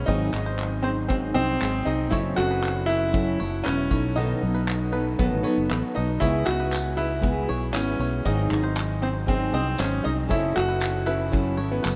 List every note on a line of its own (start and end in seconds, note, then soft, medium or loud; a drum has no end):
0.06 0.29 G#1 medium
0.06 0.33 G#2 medium
0.06 0.33 D#3 medium
0.06 0.32 F#3 medium
0.06 0.31 C4 medium
0.06 0.86 D#4 medium
0.06 0.31 D#4 medium
0.06 0.30 G#4 medium
0.06 0.32 D#5 medium
0.06 kick medium
0.31 1.32 G#1 medium
0.31 0.86 F#3 soft
0.31 0.84 C4 soft
0.31 0.83 D#4 soft
0.31 0.83 G#4 medium
0.31 clap medium
0.46 0.71 C5 medium
0.59 clap loud
0.82 1.08 F#3 soft
0.82 0.88 C4 medium
0.82 1.09 C4 soft
0.82 1.09 D#4 soft
0.82 1.10 G#4 soft
0.82 0.97 C5 medium
1.08 1.36 G#2 medium
1.08 1.36 D#3 medium
1.08 1.35 F#3 medium
1.08 1.14 C4 medium
1.08 1.35 C4 medium
1.08 1.35 D#4 medium
1.08 1.34 G#4 medium
1.08 kick loud
1.34 1.56 C2 medium
1.34 1.59 F#3 soft
1.34 1.88 C4 loud
1.34 1.60 C4 soft
1.34 1.61 D#4 soft
1.34 1.61 G#4 soft
1.34 1.48 D#5 medium
1.60 1.82 G#1 medium
1.60 1.86 F#3 medium
1.60 1.85 C4 medium
1.60 1.85 D#4 medium
1.60 1.84 G#4 medium
1.60 1.74 C5 medium
1.60 clap loud
1.85 2.13 C2 medium
1.85 2.09 F#3 soft
1.85 2.10 C4 soft
1.85 2.12 D#4 medium
1.85 2.10 D#4 soft
1.85 2.11 G#4 soft
1.85 1.99 D#5 medium
2.10 2.34 F#1 loud
2.10 2.37 F#3 medium
2.10 2.37 C#4 medium
2.10 2.17 E4 medium
2.10 2.36 E4 medium
2.10 2.35 A4 medium
2.10 2.37 C#5 medium
2.10 kick medium
2.36 3.36 F#1 medium
2.36 2.89 C#4 soft
2.36 2.88 E4 soft
2.36 2.85 F#4 loud
2.36 2.88 A4 medium
2.36 clap medium
2.51 2.75 B4 medium
2.64 clap loud
2.86 3.12 C#4 soft
2.86 3.60 E4 loud
2.86 3.12 E4 soft
2.86 3.13 A4 soft
2.86 3.01 B4 medium
3.12 3.39 F#3 medium
3.12 3.39 C#4 medium
3.12 3.39 E4 medium
3.12 3.38 A4 medium
3.12 kick loud
3.39 3.62 F#1 medium
3.39 3.64 C#4 soft
3.39 3.64 E4 soft
3.39 3.65 A4 soft
3.39 3.64 C#5 medium
3.64 3.87 E1 medium
3.64 3.91 F#3 medium
3.64 4.17 C#4 medium
3.64 3.91 C#4 medium
3.64 3.91 E4 medium
3.64 3.90 A4 medium
3.64 3.78 B4 medium
3.64 clap loud
3.91 4.33 B1 medium
3.91 4.16 F#3 soft
3.91 4.16 B3 soft
3.91 4.17 D#4 soft
3.91 4.16 A4 soft
3.91 4.03 C#5 medium
3.91 kick loud
4.16 4.42 B2 medium
4.16 4.42 D#3 medium
4.16 4.43 F#3 medium
4.16 4.42 B3 medium
4.16 4.95 D#4 medium
4.16 4.41 D#4 medium
4.16 4.40 A4 medium
4.16 4.41 D#5 medium
4.42 5.16 B1 medium
4.42 4.93 F#3 soft
4.42 4.93 B3 soft
4.42 4.92 D#4 soft
4.42 4.91 A4 medium
4.55 4.79 B4 medium
4.68 clap loud
4.92 5.18 F#3 soft
4.92 5.17 B3 medium
4.92 5.18 B3 soft
4.92 5.19 D#4 soft
4.92 5.18 A4 soft
4.92 5.05 B4 medium
5.18 5.30 B1 medium
5.18 5.44 B2 medium
5.18 5.45 D#3 medium
5.18 5.45 F#3 medium
5.18 5.25 B3 medium
5.18 5.45 B3 medium
5.18 5.44 D#4 medium
5.18 5.44 A4 medium
5.18 kick loud
5.33 5.43 A1 medium
5.43 5.69 F#3 soft
5.43 5.97 B3 medium
5.43 5.71 B3 soft
5.43 5.71 D#4 medium
5.43 5.70 A4 medium
5.43 5.57 C#5 medium
5.58 5.68 F#1 medium
5.70 5.81 A1 medium
5.70 5.96 F#3 medium
5.70 5.96 B3 medium
5.70 5.95 D#4 medium
5.70 5.94 A4 medium
5.70 5.82 B4 medium
5.70 clap loud
5.95 6.18 B1 medium
5.95 6.20 F#3 soft
5.95 6.20 B3 soft
5.95 6.22 D#4 medium
5.95 6.20 D#4 soft
5.95 6.21 A4 soft
5.95 6.08 D#5 medium
6.20 6.43 C#2 medium
6.20 6.46 C#3 medium
6.20 6.46 G#3 medium
6.20 6.46 B3 medium
6.20 6.47 E4 medium
6.20 6.45 E4 medium
6.20 6.44 G#4 medium
6.20 6.46 C#5 medium
6.20 kick medium
6.45 7.46 C#2 medium
6.45 6.96 B3 soft
6.45 6.95 E4 medium
6.45 6.99 F#4 medium
6.45 6.95 G#4 medium
6.45 clap medium
6.60 6.84 B4 medium
6.72 clap loud
6.72 tambourine medium
6.96 7.20 B3 soft
6.96 7.21 E4 soft
6.96 7.77 E4 medium
6.96 7.21 G#4 soft
6.96 7.10 B4 medium
7.21 7.48 C#3 medium
7.21 7.48 G#3 medium
7.21 7.48 B3 medium
7.21 7.48 E4 medium
7.21 7.47 G#4 medium
7.21 kick loud
7.48 7.75 B1 medium
7.48 7.73 B3 soft
7.48 7.73 E4 soft
7.48 7.74 G#4 medium
7.48 7.75 C#5 medium
7.73 7.96 G#1 medium
7.73 8.25 G#3 medium
7.73 8.26 B3 medium
7.73 8.27 C#4 medium
7.73 8.26 E4 medium
7.73 8.26 G#4 medium
7.73 7.87 B4 medium
7.73 clap loud
7.73 tambourine medium
7.99 8.21 B1 medium
7.99 8.13 C#5 medium
8.25 8.47 G#1 medium
8.25 8.51 G#2 medium
8.25 8.51 D#3 medium
8.25 8.50 F#3 medium
8.25 8.49 C4 medium
8.25 9.05 D#4 medium
8.25 8.49 D#4 medium
8.25 8.49 G#4 medium
8.25 8.50 D#5 medium
8.25 kick medium
8.50 9.50 G#1 medium
8.50 9.26 F#3 soft
8.50 9.26 C4 soft
8.50 9.26 D#4 medium
8.50 9.26 G#4 medium
8.50 clap medium
8.63 8.88 C5 medium
8.76 clap loud
8.76 tambourine medium
9.02 9.08 C4 medium
9.02 9.15 C5 medium
9.26 9.53 G#2 medium
9.26 9.53 D#3 medium
9.26 9.53 F#3 medium
9.26 9.53 C4 medium
9.26 9.52 D#4 medium
9.26 9.51 G#4 medium
9.26 kick loud
9.52 9.75 C2 medium
9.52 9.76 F#3 soft
9.52 9.77 C4 medium
9.52 9.81 C4 medium
9.52 9.77 D#4 soft
9.52 9.78 G#4 medium
9.52 9.66 D#5 medium
9.77 10.01 G#1 medium
9.77 10.04 F#3 medium
9.77 10.03 C4 medium
9.77 10.06 C#4 medium
9.77 10.03 D#4 medium
9.77 10.02 G#4 medium
9.77 9.92 C5 medium
9.77 clap loud
9.77 tambourine medium
10.03 10.31 C2 medium
10.03 10.27 F#3 soft
10.03 10.28 C4 soft
10.03 10.10 D#4 medium
10.03 10.28 D#4 soft
10.03 10.29 G#4 soft
10.03 10.17 D#5 medium
10.28 10.52 F#1 medium
10.28 10.55 F#3 medium
10.28 10.54 C#4 medium
10.28 10.53 E4 medium
10.28 10.57 E4 medium
10.28 10.52 A4 medium
10.28 10.55 C#5 medium
10.28 kick medium
10.53 11.60 F#1 medium
10.53 11.07 C#4 soft
10.53 11.06 E4 soft
10.53 11.09 F#4 loud
10.53 11.05 A4 soft
10.53 clap medium
10.69 10.93 B4 medium
10.80 clap loud
10.80 tambourine medium
11.06 11.31 C#4 soft
11.06 11.73 E4 medium
11.06 11.31 E4 soft
11.06 11.31 A4 soft
11.06 11.19 B4 medium
11.31 11.58 F#3 medium
11.31 11.57 C#4 medium
11.31 11.56 E4 medium
11.31 11.56 A4 medium
11.31 kick loud
11.57 11.80 G#1 medium
11.57 11.83 E4 soft
11.57 11.83 A4 medium
11.57 11.82 C#5 medium
11.71 11.96 B3 medium
11.83 11.96 F#1 medium
11.83 11.96 F#3 medium
11.83 11.96 C#4 medium
11.83 11.96 E4 medium
11.83 11.96 A4 medium
11.83 11.96 B4 medium
11.83 clap loud
11.83 tambourine medium